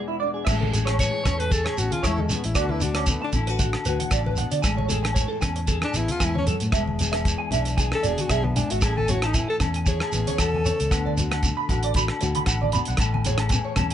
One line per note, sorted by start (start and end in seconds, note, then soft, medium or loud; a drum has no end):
0.00 0.48 E2 medium
0.00 0.45 B2 medium
0.00 0.45 E3 medium
0.00 0.45 G#3 medium
0.00 0.21 D4 soft
0.08 0.15 E4 medium
0.20 0.45 D4 medium
0.20 0.28 D5 medium
0.34 0.41 G#4 medium
0.45 1.08 A1 medium
0.45 2.57 A2 medium
0.45 0.53 E5 medium
0.45 kick medium
0.45 cross-stick medium
0.45 crash medium
0.45 low agogo medium
0.45 shekere medium
0.49 1.00 E3 medium
0.49 2.04 G#3 medium
0.49 1.26 C#4 medium
0.49 0.74 G#4 medium
0.60 0.67 A4 medium
0.60 high conga medium
0.71 0.80 G#4 medium
0.71 1.52 G#4 medium
0.71 closed hi-hat soft
0.71 low conga medium
0.71 shekere medium
0.85 0.93 C#5 medium
0.85 cross-stick medium
0.85 closed hi-hat medium
0.85 low agogo medium
0.99 2.54 E3 medium
0.99 1.41 C#5 medium
0.99 kick medium
0.99 closed hi-hat medium
0.99 low conga medium
0.99 shekere medium
1.11 1.19 G#4 medium
1.24 1.66 E2 medium
1.24 1.79 C#4 medium
1.24 1.32 C#5 medium
1.24 kick medium
1.24 cross-stick medium
1.24 closed hi-hat soft
1.24 low conga medium
1.24 low agogo medium
1.24 shekere loud
1.37 1.45 A4 medium
1.37 1.54 B4 medium
1.37 closed hi-hat soft
1.50 1.59 G#4 medium
1.50 2.54 G#4 medium
1.50 1.67 A4 medium
1.50 kick medium
1.50 closed hi-hat soft
1.50 high conga medium
1.50 shekere medium
1.64 1.80 G#4 medium
1.64 1.71 C#5 medium
1.64 cross-stick medium
1.64 low agogo medium
1.78 1.89 A1 medium
1.78 2.57 E2 medium
1.78 2.30 C#4 medium
1.78 1.94 F#4 medium
1.78 closed hi-hat soft
1.78 shekere medium
1.91 2.07 F4 medium
1.91 1.98 G#4 medium
1.91 closed hi-hat soft
1.91 high conga medium
2.03 2.35 E2 medium
2.03 2.54 G#3 medium
2.03 2.22 E4 medium
2.03 2.11 C#5 medium
2.03 kick medium
2.03 cross-stick medium
2.03 closed hi-hat soft
2.03 low agogo medium
2.03 shekere medium
2.17 2.35 G#3 medium
2.17 2.24 A4 medium
2.17 high conga medium
2.30 2.47 B3 medium
2.30 2.54 C#4 medium
2.30 2.38 G#4 medium
2.30 closed hi-hat soft
2.30 low conga medium
2.30 shekere medium
2.44 2.54 A1 medium
2.44 2.58 E4 medium
2.44 closed hi-hat soft
2.44 shekere soft
2.55 3.16 D2 medium
2.55 4.65 D3 medium
2.55 4.66 B3 medium
2.55 2.72 F#4 medium
2.55 2.64 D5 loud
2.55 kick medium
2.55 cross-stick medium
2.55 closed hi-hat medium
2.55 low agogo medium
2.55 shekere medium
2.69 2.83 E4 medium
2.69 2.76 B4 medium
2.69 high conga medium
2.80 2.98 D4 medium
2.80 3.35 F#4 medium
2.80 closed hi-hat medium
2.80 high conga medium
2.80 low conga medium
2.80 shekere medium
2.95 3.11 C#4 medium
2.95 3.03 D5 medium
2.95 cross-stick medium
2.95 closed hi-hat medium
2.95 low agogo medium
3.06 4.62 A3 medium
3.06 3.23 B3 medium
3.06 kick medium
3.06 closed hi-hat medium
3.06 low conga medium
3.06 shekere medium
3.22 3.31 D4 medium
3.22 3.29 A5 medium
3.33 3.74 A1 medium
3.33 3.49 E4 medium
3.33 kick medium
3.33 closed hi-hat medium
3.33 low conga medium
3.33 low agogo medium
3.33 shekere medium
3.47 3.61 F#4 medium
3.47 3.54 B4 medium
3.47 closed hi-hat medium
3.59 3.68 F#5 medium
3.59 kick medium
3.59 closed hi-hat medium
3.59 high conga medium
3.59 shekere medium
3.63 3.87 F#4 medium
3.73 cross-stick medium
3.73 low agogo medium
3.85 3.98 D2 medium
3.85 4.13 A2 medium
3.85 4.63 F#4 medium
3.85 3.94 B4 medium
3.85 closed hi-hat medium
3.85 shekere medium
4.00 4.07 F#5 medium
4.00 closed hi-hat medium
4.00 high conga medium
4.11 4.43 A1 medium
4.11 4.40 C#3 medium
4.11 4.20 D5 medium
4.11 kick medium
4.11 cross-stick medium
4.11 closed hi-hat soft
4.11 low agogo medium
4.11 shekere medium
4.26 4.33 B4 medium
4.26 high conga medium
4.36 4.63 B2 medium
4.36 4.46 F#5 medium
4.36 closed hi-hat medium
4.36 low conga medium
4.36 shekere medium
4.51 4.62 D3 medium
4.51 4.58 D5 medium
4.51 closed hi-hat medium
4.51 shekere soft
4.62 5.24 A1 medium
4.62 5.95 A2 medium
4.62 6.76 G#3 medium
4.62 4.71 G#5 medium
4.62 kick medium
4.62 cross-stick medium
4.62 closed hi-hat soft
4.62 low agogo medium
4.62 shekere medium
4.77 4.84 C#5 medium
4.77 high conga medium
4.89 5.71 G#4 medium
4.89 4.97 A4 medium
4.89 closed hi-hat medium
4.89 high conga medium
4.89 low conga medium
4.89 shekere loud
5.03 5.10 G#5 medium
5.03 cross-stick medium
5.03 closed hi-hat medium
5.03 low agogo medium
5.14 5.23 C#5 medium
5.14 kick medium
5.14 closed hi-hat medium
5.14 low conga medium
5.14 shekere medium
5.18 7.26 E3 medium
5.28 5.36 A4 medium
5.41 5.83 E2 medium
5.41 5.96 C#4 medium
5.41 5.50 G#5 medium
5.41 kick medium
5.41 cross-stick medium
5.41 closed hi-hat soft
5.41 low conga medium
5.41 low agogo medium
5.41 shekere medium
5.56 muted clean electric guitar stroke medium
5.56 closed hi-hat soft
5.67 7.01 G#4 medium
5.67 5.76 A4 medium
5.67 kick medium
5.67 closed hi-hat soft
5.67 high conga medium
5.67 shekere medium
5.82 5.98 D4 medium
5.82 5.89 G#5 medium
5.82 cross-stick medium
5.82 low agogo medium
5.94 6.06 A1 medium
5.94 6.22 E2 medium
5.94 6.12 B3 medium
5.94 6.13 E4 medium
5.94 closed hi-hat soft
5.94 shekere medium
6.08 6.75 C#4 medium
6.08 6.26 F4 medium
6.08 closed hi-hat medium
6.08 high conga medium
6.20 6.52 E2 medium
6.20 6.48 G#2 medium
6.20 6.37 E4 medium
6.20 6.28 G#5 medium
6.20 kick medium
6.20 cross-stick medium
6.20 closed hi-hat soft
6.20 low agogo medium
6.20 shekere medium
6.35 6.45 C#4 medium
6.35 6.42 C#5 medium
6.35 high conga medium
6.47 6.75 F#2 medium
6.47 6.55 A4 medium
6.47 closed hi-hat soft
6.47 low conga medium
6.47 shekere medium
6.60 6.71 A2 medium
6.60 closed hi-hat soft
6.60 shekere soft
6.72 7.34 E1 medium
6.72 8.30 E2 medium
6.72 8.81 G#3 medium
6.72 6.80 E5 medium
6.72 kick medium
6.72 cross-stick medium
6.72 closed hi-hat soft
6.72 low agogo medium
6.72 shekere medium
6.87 high conga medium
6.99 7.79 G#4 medium
6.99 closed hi-hat soft
6.99 high conga medium
6.99 low conga medium
6.99 shekere medium
7.12 7.19 E5 medium
7.12 cross-stick medium
7.12 closed hi-hat soft
7.12 low agogo medium
7.16 shekere soft
7.25 8.80 E3 medium
7.25 kick medium
7.25 closed hi-hat medium
7.25 low conga medium
7.25 shekere medium
7.38 7.45 G#5 medium
7.51 7.93 B1 medium
7.51 8.04 D4 medium
7.51 7.60 E5 medium
7.51 closed hi-hat soft
7.51 low conga medium
7.51 low agogo medium
7.51 shekere medium
7.65 muted clean electric guitar stroke medium
7.65 closed hi-hat soft
7.65 shekere soft
7.77 8.80 G#4 medium
7.77 7.85 G#5 medium
7.77 kick loud
7.77 closed hi-hat medium
7.77 high conga medium
7.77 shekere medium
7.92 8.08 A4 medium
7.92 cross-stick medium
7.92 low agogo medium
8.03 8.16 E1 medium
8.03 8.80 B2 medium
8.03 8.80 D4 medium
8.03 8.11 D5 medium
8.03 closed hi-hat soft
8.03 shekere medium
8.07 8.22 G#4 medium
8.18 8.33 F#4 medium
8.18 8.25 G#5 medium
8.18 closed hi-hat medium
8.18 high conga medium
8.18 shekere soft
8.29 8.61 B1 medium
8.29 8.57 F#2 medium
8.29 8.46 G#4 medium
8.29 8.38 E5 medium
8.29 kick medium
8.29 cross-stick medium
8.29 closed hi-hat soft
8.29 low agogo medium
8.29 shekere medium
8.44 8.57 B3 medium
8.44 muted clean electric guitar stroke medium
8.44 high conga medium
8.56 8.83 G#2 medium
8.56 8.73 D4 medium
8.56 8.64 G#5 medium
8.56 closed hi-hat medium
8.56 low conga medium
8.56 shekere medium
8.70 8.80 G#1 medium
8.70 8.85 F#4 medium
8.70 8.77 E5 medium
8.70 closed hi-hat medium
8.70 shekere soft
8.81 9.43 A1 medium
8.81 10.39 A2 medium
8.81 8.99 G#4 medium
8.81 8.90 A5 loud
8.81 muted nylon-string guitar stroke medium
8.81 kick medium
8.81 cross-stick medium
8.81 closed hi-hat medium
8.81 low agogo medium
8.81 shekere medium
8.86 10.96 A3 medium
8.86 9.62 C#4 medium
8.86 9.10 E4 medium
8.97 9.12 A4 medium
8.97 9.04 G#5 medium
8.97 high conga medium
9.08 9.86 E4 medium
9.08 9.27 F#4 medium
9.08 9.17 C#5 medium
9.08 closed hi-hat medium
9.08 high conga medium
9.08 low conga medium
9.08 shekere loud
9.22 9.36 D#4 medium
9.22 9.30 A5 medium
9.22 cross-stick medium
9.22 closed hi-hat medium
9.22 low agogo medium
9.34 10.89 E3 medium
9.34 9.49 E4 medium
9.34 9.43 G#5 medium
9.34 kick medium
9.34 closed hi-hat medium
9.34 low conga medium
9.34 shekere medium
9.48 9.55 A4 medium
9.48 9.57 A4 medium
9.60 10.00 E2 medium
9.60 10.14 C#4 medium
9.60 9.69 A5 medium
9.60 kick medium
9.60 cross-stick medium
9.60 closed hi-hat soft
9.60 low conga medium
9.60 low agogo medium
9.60 shekere loud
9.74 9.82 G#5 medium
9.74 closed hi-hat medium
9.86 10.91 E4 medium
9.86 10.42 G#4 medium
9.86 9.95 C#5 medium
9.86 kick medium
9.86 closed hi-hat soft
9.86 high conga medium
9.86 shekere medium
10.00 10.09 A5 medium
10.00 cross-stick medium
10.00 low agogo medium
10.12 10.24 A1 medium
10.12 10.91 E2 medium
10.12 10.28 B3 medium
10.12 closed hi-hat soft
10.12 shekere medium
10.27 10.91 C#4 soft
10.27 10.34 C#5 medium
10.27 closed hi-hat medium
10.27 high conga medium
10.38 10.69 E2 medium
10.38 10.65 B2 medium
10.38 11.18 A4 loud
10.38 10.47 A5 medium
10.38 kick medium
10.38 cross-stick medium
10.38 closed hi-hat soft
10.38 low agogo medium
10.38 shekere medium
10.54 10.61 G#5 medium
10.54 high conga medium
10.65 10.91 C#3 medium
10.65 10.73 C#5 medium
10.65 closed hi-hat soft
10.65 low conga medium
10.65 shekere medium
10.80 10.89 C#2 loud
10.80 closed hi-hat soft
10.80 shekere soft
10.91 11.51 D2 medium
10.91 13.00 D3 medium
10.91 13.01 B3 medium
10.91 10.99 F#5 medium
10.91 kick medium
10.91 cross-stick medium
10.91 closed hi-hat soft
10.91 low agogo medium
10.91 shekere medium
11.05 11.12 D5 medium
11.05 high conga medium
11.18 11.70 F#4 medium
11.18 closed hi-hat soft
11.18 high conga medium
11.18 low conga medium
11.18 shekere loud
11.31 11.38 F#5 medium
11.31 cross-stick medium
11.31 closed hi-hat medium
11.31 low agogo medium
11.43 12.97 A3 medium
11.43 kick medium
11.43 closed hi-hat medium
11.43 low conga medium
11.43 shekere medium
11.57 11.64 B5 medium
11.69 12.09 A1 medium
11.69 11.96 F#4 medium
11.69 11.78 F#5 medium
11.69 kick medium
11.69 closed hi-hat soft
11.69 low conga medium
11.69 low agogo medium
11.69 shekere medium
11.83 11.90 D5 medium
11.83 closed hi-hat medium
11.94 12.21 F#4 medium
11.94 12.04 B5 loud
11.94 kick medium
11.94 closed hi-hat medium
11.94 high conga medium
11.94 shekere medium
12.08 cross-stick medium
12.08 low agogo medium
12.21 12.33 D2 medium
12.21 12.48 A2 medium
12.21 12.97 F#4 medium
12.21 muted clean electric guitar stroke medium
12.21 closed hi-hat soft
12.21 shekere medium
12.35 12.42 B5 medium
12.35 closed hi-hat medium
12.35 high conga medium
12.46 12.77 A1 loud
12.46 12.55 F#5 medium
12.46 muted nylon-string guitar stroke medium
12.46 kick medium
12.46 cross-stick medium
12.46 closed hi-hat medium
12.46 low agogo medium
12.46 shekere medium
12.61 12.68 D5 medium
12.61 high conga medium
12.72 13.00 B2 medium
12.72 12.81 B5 medium
12.72 closed hi-hat medium
12.72 low conga medium
12.72 shekere medium
12.85 12.97 B1 loud
12.85 12.94 F#5 medium
12.85 closed hi-hat medium
12.85 shekere soft
12.97 13.59 A1 medium
12.97 13.94 A2 medium
12.97 13.08 A5 loud
12.97 muted nylon-string guitar stroke medium
12.97 kick medium
12.97 cross-stick medium
12.97 closed hi-hat medium
12.97 low agogo medium
12.97 shekere medium
13.14 13.20 G#5 medium
13.14 high conga medium
13.25 13.94 G#4 medium
13.25 13.34 C#5 medium
13.25 closed hi-hat medium
13.25 high conga medium
13.25 low conga medium
13.25 shekere loud
13.38 13.46 A5 medium
13.38 cross-stick medium
13.38 closed hi-hat medium
13.38 low agogo medium
13.49 13.59 G#5 medium
13.49 kick medium
13.49 closed hi-hat medium
13.49 low conga medium
13.49 shekere medium
13.54 13.94 E3 medium
13.65 13.71 C#5 medium
13.76 13.94 E2 medium
13.76 13.94 C#4 medium
13.76 13.85 A5 medium
13.76 kick medium
13.76 cross-stick medium
13.76 closed hi-hat soft
13.76 low conga medium
13.76 low agogo medium
13.76 shekere loud
13.90 closed hi-hat medium